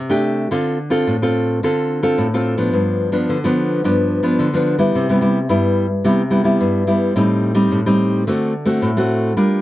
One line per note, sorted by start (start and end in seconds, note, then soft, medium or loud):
0.00 0.48 C3 medium
0.09 0.47 A3 medium
0.09 0.47 D4 medium
0.09 0.47 G4 medium
0.51 1.04 D3 medium
0.51 0.77 C4 soft
0.51 0.78 F4 medium
0.51 0.78 A4 medium
0.90 1.15 C4 medium
0.90 1.15 F4 medium
0.90 1.16 A4 medium
1.07 1.60 A2 medium
1.22 1.59 C4 medium
1.22 1.59 F4 medium
1.22 1.59 A4 medium
1.63 2.15 D3 medium
1.63 2.00 C4 medium
1.63 2.00 F4 medium
1.63 2.00 A4 medium
2.03 2.27 C4 medium
2.03 2.27 F4 medium
2.03 2.27 A4 medium
2.18 2.71 A2 medium
2.34 2.56 C4 medium
2.34 2.56 F4 medium
2.34 2.56 A4 medium
2.58 3.09 F3 medium
2.58 3.10 B3 medium
2.58 3.10 D4 medium
2.73 3.26 G2 medium
3.12 3.37 F3 medium
3.12 3.37 B3 medium
3.12 3.37 D4 medium
3.29 3.82 D3 medium
3.44 3.80 F3 medium
3.44 3.81 B3 medium
3.44 3.81 D4 medium
3.84 4.37 G2 medium
3.84 4.21 F3 medium
3.84 4.21 B3 medium
3.84 4.22 D4 medium
4.23 4.47 F3 medium
4.23 4.48 B3 medium
4.23 4.48 D4 medium
4.39 4.92 D3 medium
4.54 4.76 F3 medium
4.54 4.77 B3 medium
4.54 4.77 D4 medium
4.78 5.08 G3 medium
4.78 5.09 B3 medium
4.78 5.09 E4 medium
4.95 5.47 C3 medium
5.09 5.18 G3 medium
5.09 5.18 B3 medium
5.09 5.19 E4 medium
5.21 5.38 G3 medium
5.21 5.38 B3 medium
5.21 5.38 E4 medium
5.49 6.02 G2 medium
5.49 5.85 G3 medium
5.49 5.85 B3 medium
5.49 5.86 E4 medium
6.04 6.57 C3 medium
6.04 6.21 G3 medium
6.04 6.21 B3 medium
6.04 6.21 E4 medium
6.30 6.41 G3 medium
6.30 6.41 B3 medium
6.30 6.42 E4 medium
6.44 6.82 G3 medium
6.44 6.82 B3 medium
6.44 6.83 E4 medium
6.61 7.13 G2 medium
6.87 7.13 G3 medium
6.87 7.13 B3 medium
6.87 7.13 E4 medium
7.16 7.68 A2 medium
7.16 7.53 G3 medium
7.16 7.53 C4 medium
7.16 7.53 D#4 medium
7.55 7.79 G3 medium
7.55 7.79 C4 medium
7.55 7.79 D#4 medium
7.72 8.24 A2 medium
7.86 8.22 G3 medium
7.86 8.23 C4 medium
7.86 8.23 D#4 medium
8.27 8.79 D3 medium
8.27 8.52 A3 medium
8.27 8.53 C4 medium
8.27 8.53 F#4 medium
8.65 8.90 A3 medium
8.65 8.90 C4 medium
8.65 8.90 F#4 medium
8.82 9.34 A2 medium
8.97 9.33 A3 medium
8.97 9.33 C4 medium
8.97 9.33 F#4 medium
9.37 9.62 G3 medium
9.37 9.60 D4 medium
9.37 9.60 F4 medium
9.37 9.60 A#4 medium